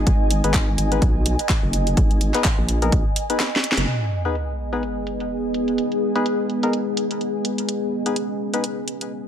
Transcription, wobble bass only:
0, 0, Header, 1, 2, 480
1, 0, Start_track
1, 0, Key_signature, 5, "minor"
1, 0, Tempo, 476190
1, 68, Time_signature, 4, 2, 24, 8
1, 9353, End_track
2, 0, Start_track
2, 0, Title_t, "Wobble bass"
2, 0, Program_c, 0, 39
2, 67, Note_on_c, 0, 32, 101
2, 422, Note_off_c, 0, 32, 0
2, 443, Note_on_c, 0, 32, 90
2, 770, Note_off_c, 0, 32, 0
2, 787, Note_on_c, 0, 32, 100
2, 1011, Note_off_c, 0, 32, 0
2, 1027, Note_on_c, 0, 35, 100
2, 1382, Note_off_c, 0, 35, 0
2, 1644, Note_on_c, 0, 30, 100
2, 1971, Note_off_c, 0, 30, 0
2, 1987, Note_on_c, 0, 32, 95
2, 2342, Note_off_c, 0, 32, 0
2, 2604, Note_on_c, 0, 34, 99
2, 2931, Note_off_c, 0, 34, 0
2, 2947, Note_on_c, 0, 34, 101
2, 3062, Note_off_c, 0, 34, 0
2, 3804, Note_on_c, 0, 30, 102
2, 3891, Note_off_c, 0, 30, 0
2, 9353, End_track
0, 0, End_of_file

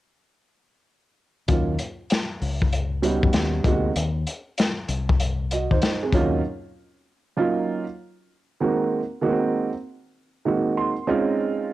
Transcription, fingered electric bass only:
0, 0, Header, 1, 2, 480
1, 0, Start_track
1, 0, Tempo, 618557
1, 1155, Time_signature, 4, 2, 24, 8
1, 9104, End_track
2, 0, Start_track
2, 0, Title_t, "Fingered electric bass"
2, 0, Program_c, 0, 33
2, 1152, Note_on_c, 0, 39, 87
2, 1370, Note_off_c, 0, 39, 0
2, 1875, Note_on_c, 0, 37, 78
2, 2477, Note_off_c, 0, 37, 0
2, 2508, Note_on_c, 0, 41, 80
2, 2583, Note_off_c, 0, 41, 0
2, 2588, Note_on_c, 0, 39, 89
2, 2807, Note_off_c, 0, 39, 0
2, 2827, Note_on_c, 0, 38, 86
2, 3047, Note_off_c, 0, 38, 0
2, 3072, Note_on_c, 0, 39, 104
2, 3290, Note_off_c, 0, 39, 0
2, 3791, Note_on_c, 0, 36, 91
2, 4395, Note_off_c, 0, 36, 0
2, 4434, Note_on_c, 0, 39, 82
2, 4510, Note_off_c, 0, 39, 0
2, 4757, Note_on_c, 0, 39, 91
2, 4973, Note_off_c, 0, 39, 0
2, 9104, End_track
0, 0, End_of_file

